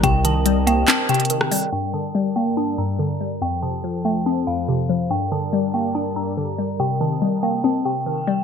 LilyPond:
<<
  \new Staff \with { instrumentName = "Synth bell" } { \time 4/4 \key g \minor \tempo 4 = 142 g''8 a''4 g''8 a''8 g''4. | g''8 a''4 g''8 a''8 bes''4. | g''8 a''4 g''8 a''8 f''4. | g''8 a''4 g''8 a''8 bes''4. |
g''8 a''4 g''8 a''8 g''4. | }
  \new Staff \with { instrumentName = "Analog synth pad" } { \time 4/4 \key g \minor << { <c' bes' ees''>1 | <g, bes' d''>1 | <f, a' c''>1 | <g, bes' d''>1 |
<c bes' ees''>1 | } \\ { g'1 | g1 | f1 | g1~ |
g1 | } >> }
  \new Staff \with { instrumentName = "Synth pluck" } { \clef bass \time 4/4 \key g \minor c8 ees8 g8 bes8 c'8 c8 ees8 g8 | g,8 d8 g8 bes8 d'8 g,8 d8 g8 | f,8 c8 f8 a8 c'8 f,8 c8 f8 | g,8 d8 g8 bes8 d'8 g,8 d8 g8 |
c8 ees8 g8 bes8 c'8 c8 ees8 g8 | }
  \new Staff \with { instrumentName = "808-style bass" } { \clef bass \time 4/4 \key g \minor c,2 r2 | r1 | r1 | r1 |
r1 | }
  \new DrumStaff \with { instrumentName = "Drums" } \drummode { \time 4/4 <hh bd>8 hh8 hh8 hh8 <hc hh>8 hh32 hh32 hh32 hh32 hh16 ss16 hho8 | r4 r4 r4 r4 | r4 r4 r4 r4 | r4 r4 r4 r4 |
r4 r4 r4 r4 | }
>>